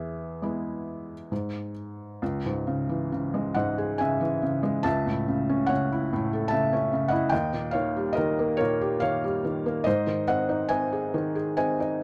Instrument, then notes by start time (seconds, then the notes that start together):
felt piano
Already playing: E2 G#4 E5
0.42 G#3 B3 E4
1.32 G#2
2.22 C#2
2.46 G#2
2.67 C#3
2.89 E3
3.12 C#3
3.34 G#3
3.54 G#2 D#5 F#5
3.78 G#4
3.98 C#3 E5 G#5
4.21 E3
4.42 C#3
4.63 G#3
4.83 C#2 E5 A5
5.06 A2
5.28 C#3
5.49 C#4
5.66 C#5 F#5
5.71 C#3
5.92 E4
6.13 A2
6.33 A4
6.48 E5 A5
6.52 C#3
6.73 C#4
6.93 C#3
7.08 E4 D#5 F#5
7.29 D#2 D#5 G5
7.53 A#2
7.71 D#3 C#5 F5
7.96 G3
8.13 A#4 D#5
8.18 D#3
8.39 A#3
8.57 A#2 A#4 C#5
8.81 G4
9.00 D#3 C#5 F5
9.24 G3
9.45 D#3
9.66 A#3
9.84 G#2 C5 D#5
10.07 D#3
10.27 C4 D#5 F#5
10.49 D#4
10.69 C4 D#5 G#5
10.93 G#4
11.14 D#3
11.35 G#4
11.57 C4 D#5 G#5
11.80 D#4